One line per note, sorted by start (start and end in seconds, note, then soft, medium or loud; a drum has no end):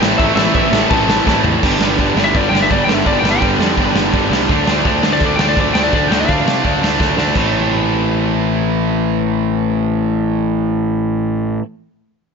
0.00 0.13 A1 medium
0.00 0.18 A2 medium
0.00 0.18 E3 loud
0.00 0.18 A3 loud
0.00 0.19 C4 loud
0.00 0.19 E4 loud
0.00 0.18 G5 loud
0.00 snare loud
0.18 0.31 A1 loud
0.18 0.35 A2 loud
0.18 0.35 E3 loud
0.18 0.35 A3 loud
0.18 0.36 C4 loud
0.18 0.36 E4 loud
0.18 0.34 E5 loud
0.18 kick loud
0.18 crash medium
0.35 0.48 A1 loud
0.35 0.54 A2 medium
0.35 0.54 E3 loud
0.35 0.54 A3 medium
0.35 0.55 C4 loud
0.35 0.55 E4 loud
0.35 0.53 E5 loud
0.35 snare loud
0.54 0.67 A1 loud
0.54 0.71 A2 loud
0.54 0.70 E3 loud
0.54 0.71 A3 medium
0.54 0.72 C4 loud
0.54 0.72 E4 loud
0.54 0.92 E5 medium
0.54 kick loud
0.54 crash medium
0.71 0.83 A1 medium
0.71 0.87 A2 medium
0.71 0.88 E3 medium
0.71 0.88 A3 loud
0.71 0.88 C4 medium
0.71 0.89 E4 medium
0.71 snare loud
0.89 1.02 A1 medium
0.89 1.06 A2 medium
0.89 1.06 E3 medium
0.89 1.07 A3 loud
0.89 1.07 C4 loud
0.89 1.08 E4 loud
0.89 1.40 A5 medium
0.89 kick loud
0.89 crash medium
0.93 1.10 A3 loud
1.07 1.19 A1 medium
1.07 1.24 A2 medium
1.07 1.25 E3 medium
1.07 1.26 A3 medium
1.07 1.26 C4 medium
1.07 1.26 E4 medium
1.07 snare loud
1.26 1.38 A1 loud
1.26 1.42 A2 medium
1.26 1.43 E3 medium
1.26 1.44 A3 loud
1.26 1.44 C4 medium
1.26 1.44 E4 loud
1.26 kick loud
1.26 snare medium
1.43 1.55 A1 medium
1.43 1.61 A2 medium
1.43 1.61 E3 medium
1.43 1.61 A3 loud
1.43 1.61 C4 medium
1.43 1.62 E4 loud
1.43 floor tom loud
1.62 1.78 G1 medium
1.62 1.80 G2 loud
1.62 1.80 D3 loud
1.62 1.81 G3 loud
1.62 1.81 B3 loud
1.62 1.82 D4 loud
1.62 kick loud
1.62 crash loud
1.79 1.95 G1 medium
1.79 1.97 G2 medium
1.79 1.97 D3 medium
1.79 1.98 G3 medium
1.79 1.99 B3 medium
1.79 1.99 D4 medium
1.79 snare loud
1.98 2.14 G1 medium
1.98 2.16 G2 medium
1.98 2.16 D3 medium
1.98 2.18 G3 medium
1.98 2.18 B3 medium
1.98 2.18 D4 medium
1.98 kick loud
1.98 open hi-hat medium
2.14 2.31 G1 medium
2.14 2.34 G2 medium
2.14 2.34 D3 medium
2.14 2.34 G3 loud
2.14 2.35 B3 loud
2.14 2.36 D4 loud
2.14 snare loud
2.24 2.37 E5 medium
2.35 2.50 G1 medium
2.35 2.50 G2 medium
2.35 2.50 D3 medium
2.35 2.51 G3 medium
2.35 2.52 B3 medium
2.35 2.53 D4 medium
2.35 2.47 D5 medium
2.35 kick loud
2.35 open hi-hat medium
2.49 2.67 G1 medium
2.49 2.68 G2 medium
2.49 2.69 D3 medium
2.49 2.69 G3 medium
2.49 2.69 B3 loud
2.49 2.71 D4 loud
2.49 2.59 G5 medium
2.55 snare loud
2.62 2.72 E5 medium
2.69 2.86 G1 medium
2.69 2.86 G2 medium
2.69 2.86 D3 medium
2.69 2.87 G3 medium
2.69 2.87 B3 medium
2.69 2.89 D4 loud
2.69 2.82 D5 medium
2.69 kick loud
2.69 open hi-hat medium
2.84 3.03 G1 medium
2.84 3.05 G2 medium
2.84 3.04 D3 medium
2.84 3.05 G3 medium
2.84 3.06 B3 medium
2.84 2.94 G5 medium
2.89 3.06 D4 medium
2.89 snare loud
2.94 3.05 E5 medium
3.05 3.21 G1 medium
3.05 3.22 G2 medium
3.05 3.22 D3 loud
3.05 3.23 G3 loud
3.05 3.23 B3 loud
3.05 3.24 D4 loud
3.05 3.18 D5 medium
3.05 kick loud
3.05 open hi-hat medium
3.19 3.38 G1 medium
3.19 3.39 G2 medium
3.19 3.30 G5 medium
3.23 3.40 D3 medium
3.23 3.40 G3 medium
3.23 3.40 B3 medium
3.23 3.42 D4 loud
3.23 snare loud
3.31 4.00 G5 medium
3.41 3.57 G1 medium
3.41 3.58 G2 medium
3.41 3.58 D3 medium
3.41 3.59 G3 medium
3.41 3.59 B3 medium
3.41 3.60 D4 medium
3.41 kick loud
3.41 open hi-hat medium
3.59 3.74 F2 medium
3.59 3.75 G2 medium
3.59 3.76 D3 medium
3.59 3.76 G3 medium
3.59 3.77 B3 loud
3.59 3.78 D4 loud
3.59 snare loud
3.76 3.93 G1 medium
3.76 3.93 G2 medium
3.76 3.93 D3 medium
3.76 3.93 G3 medium
3.76 3.94 B3 medium
3.76 3.95 D4 medium
3.76 kick loud
3.76 open hi-hat medium
3.94 4.10 G1 medium
3.94 4.11 G2 medium
3.94 4.11 D3 loud
3.94 4.12 G3 loud
3.94 4.12 B3 loud
3.94 4.13 D4 loud
3.94 snare loud
4.12 4.29 G1 medium
4.12 4.29 G2 medium
4.12 4.29 D3 medium
4.12 4.29 G3 medium
4.12 4.30 B3 medium
4.12 4.31 D4 medium
4.12 kick loud
4.12 open hi-hat medium
4.30 4.46 C2 medium
4.30 4.47 G2 medium
4.30 4.47 D3 medium
4.30 4.47 G3 medium
4.30 4.48 B3 medium
4.30 4.50 D4 medium
4.30 snare loud
4.49 4.65 D2 medium
4.49 4.66 D3 medium
4.49 4.67 F3 loud
4.49 4.67 A3 loud
4.49 4.67 D4 loud
4.49 kick loud
4.49 open hi-hat medium
4.67 4.82 D2 medium
4.67 4.84 D3 medium
4.67 4.85 F3 medium
4.67 4.85 A3 medium
4.67 4.86 D4 medium
4.67 snare loud
4.84 5.01 D2 medium
4.84 5.01 D3 medium
4.84 5.02 F3 medium
4.84 5.02 A3 medium
4.84 5.03 D4 medium
4.84 kick loud
4.84 open hi-hat medium
5.02 5.19 D2 medium
5.02 5.20 D3 medium
5.02 5.19 F3 medium
5.02 5.20 A3 loud
5.02 5.20 D4 loud
5.02 snare loud
5.13 5.22 D5 loud
5.20 5.36 D2 medium
5.20 5.38 D3 medium
5.20 5.38 F3 medium
5.20 5.39 A3 medium
5.20 5.39 D4 medium
5.20 kick loud
5.20 open hi-hat medium
5.25 5.35 D5 medium
5.36 5.54 D2 medium
5.36 5.54 D3 medium
5.36 5.54 F3 medium
5.36 5.56 A3 medium
5.36 5.46 G5 medium
5.36 snare loud
5.40 5.56 D4 medium
5.48 5.58 D5 medium
5.56 5.72 D2 medium
5.56 5.72 D3 medium
5.56 5.72 F3 medium
5.56 5.74 A3 medium
5.56 5.73 D4 medium
5.56 kick loud
5.56 open hi-hat medium
5.60 5.70 D5 medium
5.73 5.90 D2 medium
5.73 5.91 D3 medium
5.73 5.91 F3 medium
5.73 5.91 A3 medium
5.73 5.91 D4 medium
5.73 5.83 G5 medium
5.73 snare loud
5.84 5.94 D5 medium
5.92 6.08 D2 medium
5.92 6.08 D3 medium
5.92 6.08 F3 loud
5.92 6.08 A3 loud
5.92 6.09 D4 loud
5.92 6.05 D5 loud
5.92 kick loud
5.92 open hi-hat soft
6.08 6.26 D2 medium
6.08 6.25 D3 medium
6.08 6.26 F3 medium
6.08 6.26 A3 medium
6.08 6.27 D4 medium
6.08 6.18 G5 medium
6.12 snare loud
6.20 6.88 F5 loud
6.26 6.44 D2 medium
6.26 6.44 D3 medium
6.26 6.45 F3 medium
6.26 6.45 A3 medium
6.26 6.46 D4 medium
6.26 kick loud
6.26 open hi-hat soft
6.45 6.61 C3 medium
6.45 6.61 D3 medium
6.45 6.61 F3 medium
6.45 6.62 A3 loud
6.45 6.63 D4 medium
6.45 snare loud
6.62 6.80 D2 medium
6.62 6.79 D3 medium
6.62 6.80 F3 medium
6.62 6.80 A3 medium
6.62 6.80 D4 medium
6.62 kick loud
6.62 open hi-hat medium
6.80 6.97 D2 medium
6.80 6.97 D3 medium
6.80 6.97 F3 medium
6.80 6.97 A3 medium
6.80 6.98 D4 medium
6.80 snare loud
6.98 7.15 D2 medium
6.98 7.15 D3 medium
6.98 7.16 F3 medium
6.98 7.17 A3 medium
6.98 7.17 D4 medium
6.98 kick loud
6.98 snare medium
7.16 7.33 D2 medium
7.16 7.34 D3 medium
7.16 7.34 F3 medium
7.16 7.35 A3 medium
7.16 7.35 D4 medium
7.16 snare medium
7.34 11.58 A1 medium
7.34 11.60 A2 medium
7.34 11.62 E3 medium
7.34 11.63 A3 loud
7.34 11.64 C4 medium
7.34 kick loud
7.34 crash medium
7.38 11.65 E4 loud